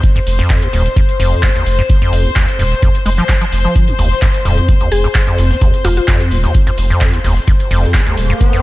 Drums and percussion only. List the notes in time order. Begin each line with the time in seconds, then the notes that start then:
0.03 kick, closed hi-hat, shaker
0.15 closed hi-hat, shaker
0.27 closed hi-hat, open hi-hat
0.39 snare, shaker
0.50 kick, snare, clap, closed hi-hat, open hi-hat, shaker
0.62 closed hi-hat, shaker
0.73 closed hi-hat, open hi-hat
0.86 closed hi-hat, shaker
0.96 kick, closed hi-hat, shaker
1.09 closed hi-hat, shaker
1.20 closed hi-hat, open hi-hat
1.33 shaker
1.43 kick, snare, clap, closed hi-hat, shaker
1.55 closed hi-hat, shaker
1.66 closed hi-hat, open hi-hat
1.79 snare, shaker
1.89 kick, closed hi-hat, shaker
2.02 closed hi-hat, shaker
2.13 closed hi-hat, open hi-hat
2.26 shaker
2.36 kick, snare, clap, closed hi-hat, shaker
2.48 closed hi-hat, shaker
2.59 closed hi-hat, open hi-hat
2.71 snare, closed hi-hat, shaker
2.82 kick, closed hi-hat, shaker
2.95 closed hi-hat, shaker
3.06 closed hi-hat, open hi-hat
3.18 clap, shaker
3.29 kick, snare, clap, closed hi-hat, shaker
3.41 snare, closed hi-hat, shaker
3.52 snare, closed hi-hat, open hi-hat
3.65 snare, shaker
3.75 kick, closed hi-hat, shaker
3.88 closed hi-hat, shaker
3.99 closed hi-hat, open hi-hat
4.11 snare, shaker
4.22 kick, snare, clap, closed hi-hat, open hi-hat, shaker
4.34 closed hi-hat, shaker
4.45 closed hi-hat, open hi-hat
4.57 closed hi-hat, shaker
4.67 kick, closed hi-hat, shaker
4.80 closed hi-hat, shaker
4.92 closed hi-hat, open hi-hat
5.04 shaker
5.15 kick, snare, clap, closed hi-hat, shaker
5.27 closed hi-hat, shaker
5.38 closed hi-hat, open hi-hat
5.51 snare, shaker
5.61 kick, closed hi-hat, shaker
5.74 closed hi-hat, shaker
5.85 closed hi-hat, open hi-hat
5.98 shaker
6.08 kick, snare, clap, closed hi-hat, shaker
6.20 closed hi-hat, shaker
6.31 closed hi-hat, open hi-hat
6.44 snare, closed hi-hat, shaker
6.54 kick, closed hi-hat, shaker
6.67 closed hi-hat, shaker
6.78 closed hi-hat, open hi-hat
6.90 shaker
7.01 kick, snare, clap, closed hi-hat, shaker
7.13 snare, closed hi-hat, shaker
7.24 snare, closed hi-hat, open hi-hat
7.37 snare, shaker
7.47 kick, closed hi-hat, shaker
7.59 closed hi-hat, shaker
7.71 closed hi-hat, open hi-hat
7.83 snare, shaker
7.93 kick, snare, clap, closed hi-hat, open hi-hat, shaker
8.06 closed hi-hat, shaker
8.17 closed hi-hat, open hi-hat
8.30 closed hi-hat, shaker
8.40 kick, closed hi-hat, shaker
8.53 closed hi-hat, shaker